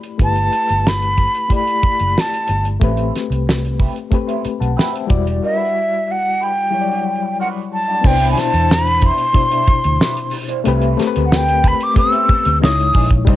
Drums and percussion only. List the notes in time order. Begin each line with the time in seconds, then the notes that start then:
0.03 closed hi-hat
0.19 kick, closed hi-hat
0.36 closed hi-hat
0.53 closed hi-hat
0.69 closed hi-hat
0.87 snare
1.02 closed hi-hat
1.17 kick, closed hi-hat
1.34 closed hi-hat
1.50 kick, closed hi-hat
1.67 closed hi-hat
1.83 kick, closed hi-hat
2.00 closed hi-hat
2.18 snare
2.34 closed hi-hat
2.48 closed hi-hat
2.65 closed hi-hat
2.81 kick, closed hi-hat
2.97 closed hi-hat
3.16 snare, closed hi-hat
3.32 closed hi-hat
3.49 snare
3.65 closed hi-hat
3.80 kick, open hi-hat
3.96 closed hi-hat
4.12 kick, closed hi-hat
4.29 closed hi-hat
4.45 closed hi-hat
4.62 closed hi-hat
4.79 snare
4.96 closed hi-hat
5.10 kick, closed hi-hat
5.27 closed hi-hat
8.04 kick, crash, muted triangle
8.19 closed hi-hat, muted triangle
8.37 snare, closed hi-hat, triangle
8.53 closed hi-hat, muted triangle
8.69 snare, muted triangle
8.85 closed hi-hat, muted triangle
9.02 kick, closed hi-hat, triangle
9.16 closed hi-hat, muted triangle
9.33 kick, closed hi-hat, muted triangle
9.50 closed hi-hat, muted triangle
9.66 kick, closed hi-hat, triangle
9.82 closed hi-hat, muted triangle
9.99 snare, muted triangle
10.15 closed hi-hat, muted triangle
10.30 open hi-hat, triangle
10.48 closed hi-hat, muted triangle
10.65 closed hi-hat, muted triangle
10.80 closed hi-hat, muted triangle
10.98 snare, closed hi-hat, triangle
11.14 closed hi-hat, muted triangle
11.31 snare, muted triangle
11.48 closed hi-hat, muted triangle
11.64 kick, closed hi-hat, triangle
11.79 closed hi-hat, muted triangle
11.96 kick, closed hi-hat, muted triangle
12.11 closed hi-hat, muted triangle
12.27 kick, closed hi-hat, triangle
12.43 closed hi-hat, muted triangle
12.61 snare, muted triangle
12.78 closed hi-hat, muted triangle
12.93 kick, open hi-hat, triangle
13.11 kick, closed hi-hat, muted triangle
13.27 kick, closed hi-hat, muted triangle